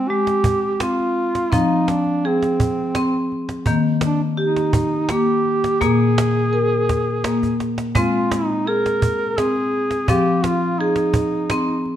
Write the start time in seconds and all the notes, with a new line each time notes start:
0.08 G#3 G4
0.27 cajon slap
0.44 cajon bass
0.73 G4
0.80 C4 F4, cajon slap
1.00 cajon slap
1.35 cajon slap
1.52 F3 C4 D#4, cajon bass
1.88 D4, cajon slap
2.07 cajon slap
2.25 C4 G#4
2.42 cajon slap
2.60 cajon bass
2.95 C4, cajon slap
3.14 cajon slap
3.32 cajon slap
3.49 cajon slap
3.66 D#3 A#3, cajon bass
4.01 cajon slap
4.06 D4
4.21 cajon slap
4.37 D#4 G4
4.56 cajon slap
4.73 cajon bass
5.09 A#3 G4, cajon slap
5.26 cajon slap
5.45 cajon slap
5.64 cajon slap
5.81 A#2 A#3 G#4, cajon bass, cajon slap
6.01 cajon slap
6.18 cajon slap
6.53 A#4, cajon slap
6.89 cajon bass, cajon slap
7.24 A#3, cajon slap
7.43 cajon bass
7.60 cajon slap
7.78 cajon slap
7.95 G#3 C4 F4, cajon bass
8.31 D#4, cajon slap
8.51 cajon slap
8.67 G#4 A#4
8.86 cajon slap
9.02 cajon bass
9.38 C4 G#4, cajon slap
9.56 cajon slap
9.73 cajon slap
9.91 cajon slap
10.08 F3 C4 G4, cajon bass
10.44 F4, cajon slap
10.62 cajon slap
10.80 D#4 G#4
10.96 cajon slap
11.14 cajon bass
11.50 C4, cajon slap
11.69 cajon slap
11.85 cajon slap